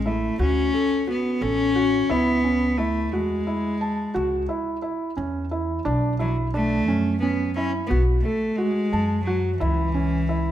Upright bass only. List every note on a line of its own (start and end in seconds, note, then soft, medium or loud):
0.00 0.29 A1 medium
0.39 0.70 D2 medium
1.41 2.03 A1 medium
2.10 3.13 C#2 medium
3.13 4.05 E2 medium
4.16 4.46 C#2 medium
5.18 5.79 E2 medium
5.86 6.88 B1 medium
6.88 7.80 F#2 medium
7.91 8.21 B1 medium
8.93 9.54 F#2 medium
9.61 10.52 C#2 medium